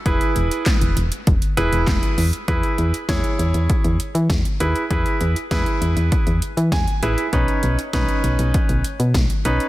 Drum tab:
HH |xxxxxxxxxxxxxxox|xxxxxxxxxxxxxxxx|xxxxxxxxxxxxxxxx|xxxxxxxxxxxxxxxx|
CP |----x-------x---|----------------|----------------|----------------|
SD |----o-------o---|----o-------o---|----o-------o---|----o-------o---|
BD |o---o---o---o---|o---o---o---o---|o---o---o---o---|o---o---o---o---|